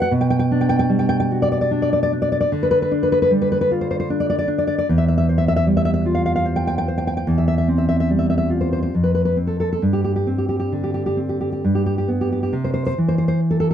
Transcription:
0.00 0.11 F#4 soft
0.00 0.11 B4 medium
0.00 0.12 F#5 medium
0.11 2.45 B2 medium
0.21 0.29 G5 medium
0.30 0.38 G5 medium
0.39 0.50 G5 medium
0.51 1.70 D4 medium
0.61 0.68 G5 medium
0.69 0.78 G5 medium
0.79 0.90 G5 medium
0.89 2.09 G3 medium
0.99 1.08 G5 medium
1.09 1.19 G5 medium
1.20 1.30 G5 medium
1.32 2.50 F#4 soft
1.42 1.51 D5 medium
1.52 1.60 D5 medium
1.61 1.70 D5 medium
1.71 2.12 D4 medium
1.82 1.91 D5 medium
1.93 2.01 D5 medium
2.03 2.11 D5 medium
2.13 2.51 D4 medium
2.22 2.30 D5 medium
2.32 2.39 D5 medium
2.41 2.50 D5 medium
2.52 4.82 D3 medium
2.63 2.70 B4 medium
2.71 2.80 B4 medium
2.82 2.91 B4 medium
2.91 4.09 D4 medium
3.03 3.11 B4 medium
3.12 3.21 B4 medium
3.22 3.31 B4 medium
3.31 4.47 G3 medium
3.42 3.50 B4 medium
3.52 3.60 B4 medium
3.61 3.70 B4 medium
3.71 4.86 F4 soft
3.81 3.90 C5 medium
3.91 3.98 C5 medium
4.00 4.08 C5 medium
4.10 4.47 D4 soft
4.20 4.28 D5 medium
4.30 4.37 D5 medium
4.39 4.47 D5 medium
4.48 4.85 D4 medium
4.58 4.66 D5 medium
4.67 4.76 D5 medium
4.78 4.86 D5 medium
4.89 7.24 E2 medium
4.98 5.06 E5 medium
5.08 5.16 E5 medium
5.18 5.26 E5 medium
5.29 6.44 C5 soft
5.38 5.46 E5 medium
5.48 5.55 E5 medium
5.56 5.65 E5 medium
5.67 6.86 G3 soft
5.77 5.84 E5 medium
5.85 5.92 E5 medium
6.05 7.26 F4 soft
6.15 6.24 F5 medium
6.26 6.34 F5 medium
6.36 6.45 F5 medium
6.45 6.87 C5 medium
6.56 6.65 G5 medium
6.67 6.76 G5 medium
6.78 6.86 G5 medium
6.88 7.27 C5 soft
6.98 7.06 G5 medium
7.07 7.16 G5 medium
7.17 7.26 G5 medium
7.27 8.90 E2 medium
7.38 7.47 E5 medium
7.48 7.57 E5 medium
7.58 7.67 E5 medium
7.68 8.93 C4 soft
7.78 7.87 E5 medium
7.89 7.98 E5 medium
8.00 8.09 E5 medium
8.10 8.94 G3 soft
8.19 8.29 E5 medium
8.30 8.37 E5 medium
8.38 8.49 E5 medium
8.50 8.93 F4 soft
8.61 8.71 C5 medium
8.73 8.81 C5 medium
8.83 8.93 C5 medium
8.95 9.80 F2 soft
9.03 9.13 B4 medium
9.15 9.24 B4 medium
9.25 9.36 B4 medium
9.37 9.81 C4 soft
9.47 9.59 A4 medium
9.60 9.71 A4 medium
9.73 9.83 A4 medium
9.82 11.60 G2 soft
9.93 10.03 G4 soft
10.04 10.15 G4 soft
10.16 10.27 G4 soft
10.27 11.15 C4 soft
10.38 10.48 G4 soft
10.49 10.58 G4 medium
10.59 10.72 G4 soft
10.72 11.63 D3 soft
10.84 10.93 G4 soft
10.94 11.05 G4 soft
11.06 11.18 G4 soft
11.17 11.63 C4 soft
11.29 11.39 G4 soft
11.41 11.51 G4 soft
11.52 11.64 G4 soft
11.64 12.51 G2 soft
11.75 11.85 G4 soft
11.86 11.97 G4 soft
11.98 12.09 G4 soft
12.08 12.53 B3 soft
12.21 12.31 G4 soft
12.32 12.42 G4 soft
12.43 12.54 G4 soft
12.53 12.96 C3 medium
12.64 12.72 C5 medium
12.74 12.85 C5 medium
12.86 12.97 C5 medium
12.98 13.74 E3 soft
13.08 13.17 C5 medium
13.18 13.27 C5 medium
13.28 13.40 C5 medium
13.51 13.59 A4 medium
13.60 13.69 A4 medium
13.71 13.74 A4 medium

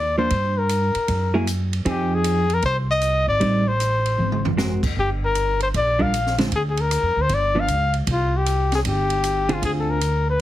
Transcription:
0.00 0.27 D#2 medium
0.00 0.16 D5 medium
0.18 0.30 F3 soft
0.18 0.30 A#3 medium
0.18 0.30 D4 medium
0.18 0.60 C5 medium
0.30 0.91 G2 medium
0.30 kick soft
0.30 ride soft
0.58 1.35 A#4 medium
0.69 hi-hat pedal soft
0.69 ride soft
0.95 muted upright bass stroke soft
0.95 ride soft
1.08 1.82 F#2 medium
1.08 kick soft
1.08 ride soft
1.34 1.46 F#3 medium
1.34 1.46 A#3 medium
1.34 1.46 E4 soft
1.34 1.46 G#4 medium
1.47 hi-hat pedal soft
1.47 ride soft
1.73 ride soft
1.85 2.59 F2 medium
1.85 2.45 F3 soft
1.85 2.45 C4 soft
1.85 2.45 D#4 soft
1.85 2.45 G#4 soft
1.85 kick soft
1.85 ride soft
1.89 2.16 G4 medium
2.15 2.55 G#4 medium
2.24 hi-hat pedal soft
2.24 ride medium
2.50 ride soft
2.54 2.65 A#4 medium
2.62 3.23 C2 medium
2.62 2.77 C5 medium
2.62 kick soft
2.62 ride soft
2.91 3.26 D#5 medium
3.01 hi-hat pedal soft
3.01 ride soft
3.27 3.40 G#1 medium
3.27 3.69 D5 medium
3.40 4.15 A1 medium
3.40 3.63 G3 soft
3.40 3.64 C4 soft
3.40 3.64 D#4 medium
3.40 kick soft
3.40 ride soft
3.68 4.45 C5 medium
3.80 hi-hat pedal soft
3.80 ride soft
4.06 ride soft
4.18 4.92 G#1 medium
4.18 high tom soft
4.32 mid tom soft
4.45 floor tom medium
4.57 4.80 G#3 soft
4.57 4.81 C4 soft
4.57 4.81 F#4 soft
4.57 4.81 A#4 soft
4.57 snare soft
4.57 hi-hat pedal soft
4.83 kick medium
4.83 crash medium
4.96 5.70 G1 medium
4.96 5.10 G4 medium
4.96 kick soft
5.25 5.60 A#4 medium
5.35 hi-hat pedal soft
5.35 ride medium
5.60 5.68 C5 medium
5.60 ride soft
5.74 6.48 A#1 medium
5.74 6.03 D5 medium
5.74 kick soft
5.74 ride soft
5.99 6.11 G3 soft
5.99 6.11 D4 medium
5.99 6.12 F4 medium
5.99 6.12 A#4 medium
5.99 6.39 F5 medium
5.99 kick soft
6.14 hi-hat pedal soft
6.14 ride medium
6.26 snare soft
6.38 6.50 D3 medium
6.38 6.51 G#3 medium
6.38 6.51 C4 medium
6.38 6.51 F4 soft
6.38 snare soft
6.38 ride soft
6.51 7.00 D2 medium
6.51 kick soft
6.51 ride soft
6.56 6.62 G#4 medium
6.69 6.82 G#4 medium
6.77 7.23 A#4 medium
6.77 ride soft
6.91 hi-hat pedal soft
6.91 ride medium
7.02 7.15 F2 soft
7.16 7.28 D2 medium
7.22 7.36 C5 medium
7.29 7.66 G1 medium
7.29 kick soft
7.29 ride soft
7.34 7.61 D5 medium
7.55 7.67 F3 medium
7.55 7.67 B3 medium
7.55 7.67 D4 medium
7.60 7.96 F5 medium
7.67 8.04 C#2 medium
7.67 hi-hat pedal soft
7.67 ride soft
7.94 ride soft
8.07 8.81 C2 medium
8.07 kick soft
8.07 ride medium
8.12 8.39 F4 medium
8.37 8.74 G4 medium
8.46 hi-hat pedal soft
8.46 ride soft
8.72 8.80 G#4 medium
8.72 snare soft
8.72 ride soft
8.84 9.58 G1 medium
8.84 9.55 G4 medium
8.84 kick soft
8.84 ride medium
9.10 ride soft
9.24 hi-hat pedal soft
9.24 ride medium
9.49 9.98 D3 medium
9.49 9.98 C4 medium
9.49 9.99 F4 medium
9.49 9.99 G#4 medium
9.49 ride soft
9.53 9.65 F4 medium
9.62 10.36 D2 medium
9.62 9.72 G#4 medium
9.62 kick soft
9.62 ride soft
9.80 9.92 A4 medium
9.90 10.28 A#4 medium
10.01 hi-hat pedal soft
10.01 ride soft
10.30 10.41 B4 medium

